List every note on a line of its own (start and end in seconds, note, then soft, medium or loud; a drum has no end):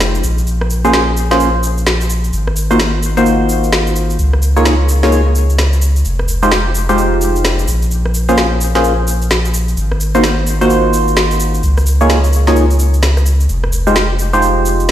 0.00 0.22 F1 medium
0.00 0.23 G#3 medium
0.00 0.23 D#4 medium
0.00 0.23 F4 medium
0.00 0.23 G4 medium
0.00 0.23 C5 loud
0.00 snare loud
0.00 cabasa soft
0.15 cabasa soft
0.24 2.31 A#1 medium
0.24 cabasa medium
0.38 cabasa soft
0.47 cabasa soft
0.61 cross-stick medium
0.70 cabasa medium
0.85 1.03 A#3 medium
0.85 1.03 C#4 medium
0.85 1.03 F4 medium
0.85 1.03 G#4 medium
0.85 1.03 C5 loud
0.85 cabasa soft
0.94 snare loud
0.94 cabasa soft
1.17 cabasa medium
1.31 1.49 A#3 medium
1.31 1.49 C#4 medium
1.31 1.49 F4 medium
1.31 1.49 G#4 medium
1.31 1.49 C5 medium
1.31 snare medium
1.31 cabasa soft
1.40 cabasa soft
1.63 cabasa medium
1.78 cabasa soft
1.87 snare loud
1.87 cabasa soft
2.01 cabasa soft
2.10 cabasa medium
2.24 cabasa soft
2.33 4.17 G#1 medium
2.33 cabasa soft
2.47 cross-stick medium
2.56 cabasa medium
2.71 2.80 A#3 medium
2.71 2.80 D#4 medium
2.71 2.80 F4 medium
2.71 2.80 F#4 medium
2.71 2.80 C5 loud
2.71 cabasa soft
2.80 snare loud
2.80 cabasa soft
3.03 cabasa medium
3.17 4.18 A#3 medium
3.17 4.18 D#4 medium
3.17 4.18 F4 medium
3.17 4.18 F#4 medium
3.17 4.18 C5 loud
3.17 cabasa soft
3.26 cabasa soft
3.49 cabasa medium
3.64 cabasa soft
3.73 snare loud
3.73 cabasa soft
3.87 cabasa soft
3.96 cabasa medium
4.10 cabasa soft
4.19 6.03 C#2 medium
4.19 cabasa soft
4.33 cross-stick medium
4.42 cabasa medium
4.57 4.75 A#3 loud
4.57 4.75 D#4 medium
4.57 4.75 F4 medium
4.57 4.75 G#4 medium
4.57 4.75 C#5 loud
4.57 cabasa soft
4.65 snare loud
4.65 cabasa soft
4.89 cabasa medium
5.03 5.21 A#3 medium
5.03 5.21 D#4 medium
5.03 5.21 F4 medium
5.03 5.21 G#4 medium
5.03 5.21 C#5 medium
5.03 snare medium
5.03 cabasa soft
5.12 cabasa soft
5.35 cabasa medium
5.50 cabasa soft
5.59 snare loud
5.59 cabasa soft
5.73 cabasa soft
5.82 cabasa medium
5.96 cabasa soft
6.05 7.66 F1 medium
6.05 cabasa soft
6.19 cross-stick medium
6.28 cabasa medium
6.43 6.52 G#3 medium
6.43 6.52 D#4 medium
6.43 6.52 F4 medium
6.43 6.52 G4 medium
6.43 6.52 C5 loud
6.43 cabasa soft
6.52 snare loud
6.52 cabasa soft
6.75 cabasa medium
6.89 7.67 G#3 medium
6.89 7.67 D#4 medium
6.89 7.67 F4 medium
6.89 7.67 G4 medium
6.89 7.67 C5 loud
6.89 cabasa soft
6.98 cabasa soft
7.21 cabasa medium
7.36 cabasa soft
7.45 snare loud
7.45 cabasa soft
7.59 cabasa soft
7.68 9.75 A#1 medium
7.68 cabasa medium
7.82 cabasa soft
7.91 cabasa soft
8.06 cross-stick medium
8.14 cabasa medium
8.29 8.47 A#3 loud
8.29 8.47 C#4 medium
8.29 8.47 F4 medium
8.29 8.47 G#4 medium
8.29 8.47 C5 loud
8.29 cabasa soft
8.38 snare loud
8.38 cabasa soft
8.61 cabasa medium
8.75 8.93 A#3 medium
8.75 8.93 C#4 medium
8.75 8.93 F4 medium
8.75 8.93 G#4 medium
8.75 8.93 C5 loud
8.75 snare medium
8.75 cabasa soft
8.84 cabasa soft
9.07 cabasa medium
9.22 cabasa soft
9.31 snare loud
9.31 cabasa soft
9.45 cabasa soft
9.54 cabasa medium
9.68 cabasa soft
9.77 11.61 G#1 medium
9.77 cabasa soft
9.92 cross-stick medium
10.00 cabasa medium
10.15 10.24 A#3 medium
10.15 10.24 D#4 medium
10.15 10.24 F4 medium
10.15 10.24 F#4 medium
10.15 10.24 C5 loud
10.15 cabasa soft
10.24 snare loud
10.24 cabasa soft
10.47 cabasa medium
10.61 11.62 A#3 medium
10.61 11.62 D#4 medium
10.61 11.62 F4 medium
10.61 11.62 F#4 medium
10.61 11.62 C5 loud
10.61 cabasa soft
10.70 cabasa soft
10.93 cabasa medium
11.08 cabasa soft
11.17 snare loud
11.17 cabasa soft
11.31 cabasa soft
11.40 cabasa medium
11.54 cabasa soft
11.63 13.47 C#2 medium
11.63 cabasa soft
11.78 cross-stick medium
11.78 cabasa soft
11.86 cabasa medium
12.01 12.19 A#3 medium
12.01 12.19 D#4 medium
12.01 12.19 F4 medium
12.01 12.19 G#4 medium
12.01 12.19 C#5 loud
12.01 cabasa soft
12.10 snare loud
12.10 cabasa soft
12.24 cabasa soft
12.33 cabasa medium
12.47 12.66 A#3 medium
12.47 12.66 D#4 medium
12.47 12.66 F4 medium
12.47 12.66 G#4 medium
12.47 12.66 C#5 medium
12.47 snare medium
12.47 cabasa soft
12.56 cabasa soft
12.71 cabasa soft
12.79 cabasa medium
12.94 cabasa soft
13.03 snare loud
13.03 cabasa soft
13.17 cross-stick soft
13.17 cabasa soft
13.26 cabasa medium
13.40 cabasa soft
13.49 14.91 F1 medium
13.49 cabasa soft
13.64 cross-stick medium
13.73 cabasa medium
13.87 13.96 G#3 medium
13.87 13.96 D#4 medium
13.87 13.96 F4 medium
13.87 13.96 G4 medium
13.87 13.96 C5 loud
13.87 cabasa soft
13.96 snare loud
13.96 cabasa soft
14.19 cabasa medium
14.33 14.91 G#3 medium
14.33 14.91 D#4 medium
14.33 14.91 F4 medium
14.33 14.91 G4 medium
14.33 14.91 C5 loud
14.33 cabasa soft
14.42 cabasa soft
14.66 cabasa medium
14.80 cabasa soft